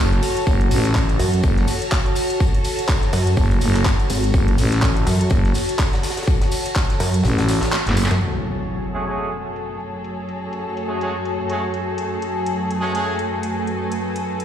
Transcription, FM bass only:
0.00 0.21 F#1 loud
0.47 0.69 F#1 loud
0.71 1.18 A1 loud
1.44 1.66 F#1 loud
3.37 3.60 F#1 loud
3.61 3.84 F#1 loud
4.34 4.57 F#1 loud
4.58 5.05 A1 loud
5.31 5.53 F#1 loud
7.24 7.60 A1 loud
7.87 8.09 F#1 loud

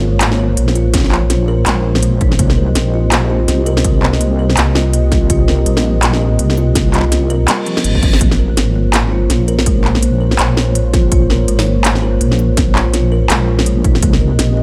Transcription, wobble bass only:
0.00 0.56 G#1 loud
0.57 1.65 A#1 medium
1.66 2.20 A#1 loud
2.21 2.38 A#1 medium
2.39 2.74 C2 loud
2.75 3.47 A#1 loud
3.48 4.56 C2 loud
4.57 5.29 C2 loud
5.30 5.65 C2 loud
5.66 6.38 A#1 loud
6.39 7.47 C2 loud
7.84 8.20 G1 medium
8.21 8.56 A#1 loud
8.57 9.29 G#1 medium
9.30 10.38 A#1 loud
10.39 11.10 A#1 loud
11.12 11.47 A#1 loud
11.48 12.20 G#1 loud
12.21 13.29 A#1 loud
13.30 13.83 A#1 loud
13.84 14.01 A#1 loud
14.03 14.38 C2 medium
14.39 14.63 A#1 loud

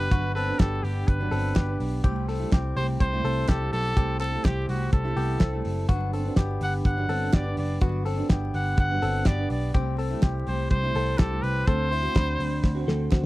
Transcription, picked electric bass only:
0.12 0.51 G1 medium
0.60 0.80 G1 loud
0.83 1.03 G1 loud
1.08 1.28 G1 loud
1.32 1.52 G1 loud
1.57 1.76 G1 loud
1.80 2.00 B1 medium
2.04 2.44 C2 loud
2.53 2.72 C2 loud
2.76 2.96 C2 medium
3.00 3.20 C2 loud
3.24 3.44 C2 loud
3.49 3.69 C2 loud
3.73 3.92 B1 medium
3.97 4.36 C2 loud
4.45 4.65 C2 loud
4.69 4.88 C2 medium
4.93 5.13 C2 medium
5.16 5.36 C2 medium
5.41 5.61 C2 medium
5.65 5.85 F#1 medium
5.89 6.29 G1 loud
6.37 6.57 G1 loud
6.61 6.81 G1 medium
6.85 7.05 G1 loud
7.09 7.29 G1 medium
7.34 7.53 G1 loud
7.57 7.77 F#1 medium
7.82 8.21 G1 loud
8.30 8.50 G1 loud
8.54 8.74 G1 medium
8.78 8.98 G1 medium
9.03 9.22 G1 loud
9.26 9.46 G1 loud
9.50 9.70 B1 medium
9.74 10.14 C2 loud
10.23 10.43 C2 loud
10.48 10.67 C2 medium
10.71 10.90 C2 loud
10.95 11.15 C2 medium
11.20 11.39 C2 loud
11.43 11.63 C2 medium
11.67 12.07 D2 loud
12.16 12.35 D2 loud
12.40 12.59 D2 loud
12.64 12.83 D2 loud
12.88 13.08 D2 loud
13.12 13.26 D2 medium

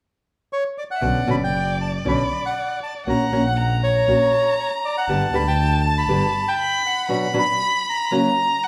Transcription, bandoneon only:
0.53 0.64 C#5 medium
0.78 0.84 D5 medium
0.91 1.30 F#5 medium
1.31 1.36 B5 medium
1.44 1.78 G5 medium
1.81 1.92 A5 medium
2.09 2.46 B5 medium
2.46 2.80 F#5 medium
2.83 2.94 A5 medium
3.09 3.43 A#5 medium
3.47 3.81 F#5 medium
3.83 4.55 C#5 medium
4.60 4.71 C#5 medium
4.85 4.96 D5 medium
4.98 5.36 F#5 medium
5.35 5.47 B5 medium
5.48 5.82 G5 medium
5.87 5.98 A5 medium
5.98 6.48 B5 medium
6.48 6.82 G5 medium
6.86 7.32 F#5 medium
7.39 7.84 B5 medium
7.89 8.68 A#5 medium

